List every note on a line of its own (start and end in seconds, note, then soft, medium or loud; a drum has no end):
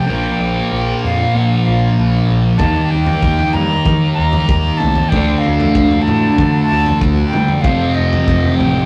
0.00 0.71 G5 medium
0.07 0.29 A#1 medium
0.07 2.57 A#2 medium
0.07 2.59 F3 loud
0.11 2.60 F3 medium
0.11 5.10 A#3 medium
0.11 2.60 A#3 loud
0.11 2.59 D4 medium
0.11 2.59 A#4 medium
0.39 0.59 A#1 medium
0.71 0.91 A#1 medium
0.71 1.01 G5 medium
1.04 1.24 F2 medium
1.04 1.94 F5 medium
1.35 1.54 A#2 medium
1.67 1.87 A#1 medium
1.99 2.18 A#1 medium
2.30 2.49 A#1 medium
2.57 2.80 D#2 medium
2.57 5.10 D#3 loud
2.57 5.10 G3 medium
2.57 5.11 A#3 medium
2.57 5.10 D#4 medium
2.57 5.10 A#4 medium
2.57 2.92 A5 loud
2.57 kick loud
2.57 floor tom medium
2.63 5.12 D#4 loud
2.91 3.13 D#2 medium
2.91 3.55 G5 medium
3.06 floor tom medium
3.23 3.43 D#2 medium
3.23 kick loud
3.39 floor tom medium
3.53 3.75 G2 medium
3.53 4.13 A#5 loud
3.53 floor tom medium
3.85 4.06 D#3 medium
3.85 kick loud
3.85 floor tom medium
4.14 4.79 A#5 loud
4.18 4.38 D#2 medium
4.33 floor tom medium
4.49 4.69 D#2 medium
4.49 kick loud
4.77 5.10 A5 loud
4.77 mid tom medium
4.82 5.02 C2 medium
4.95 floor tom medium
5.09 7.62 D3 medium
5.09 5.40 G5 medium
5.09 kick loud
5.09 floor tom medium
5.13 5.33 D2 loud
5.13 8.86 F3 medium
5.13 7.67 A3 medium
5.13 8.86 A3 medium
5.13 7.63 D4 medium
5.13 7.65 D4 medium
5.13 7.63 A4 medium
5.38 6.03 F5 medium
5.47 5.66 D2 medium
5.60 floor tom medium
5.75 5.96 D2 medium
5.75 kick loud
5.91 floor tom medium
6.02 6.63 A5 loud
6.07 6.28 A2 medium
6.07 floor tom medium
6.38 6.59 D3 medium
6.38 kick loud
6.38 floor tom medium
6.63 7.00 A5 loud
6.71 6.91 D2 medium
6.86 floor tom medium
7.01 7.22 D2 medium
7.01 kick loud
7.28 7.63 G5 medium
7.33 7.54 G2 medium
7.33 mid tom medium
7.48 floor tom medium
7.61 7.85 F1 medium
7.61 8.86 F2 medium
7.61 8.86 C3 loud
7.61 8.86 G4 medium
7.61 7.96 F5 medium
7.61 kick loud
7.61 floor tom medium
7.65 8.86 F3 medium
7.65 8.86 C4 medium
7.95 8.17 F1 medium
7.95 8.57 D#5 medium
8.13 floor tom medium
8.28 8.49 F1 medium
8.28 kick loud
8.44 floor tom medium
8.56 8.79 A1 medium
8.56 8.86 G5 medium
8.60 floor tom medium